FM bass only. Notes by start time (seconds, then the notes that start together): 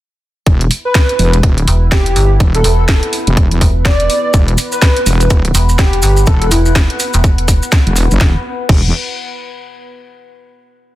1.68 E1
2.16 G1
2.64 E1
3.61 E1
5.55 E1
6.03 G1
6.51 E1
7.14 E1